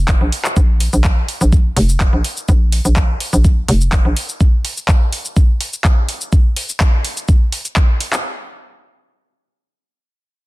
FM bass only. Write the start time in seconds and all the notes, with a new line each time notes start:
Already playing: F1
0.21 A#1
0.57 A#1
0.93 A#1
1.41 A#1
1.76 F1
2.13 A#1
2.49 A#1
2.85 A#1
3.33 A#1
3.68 F1
4.05 A#1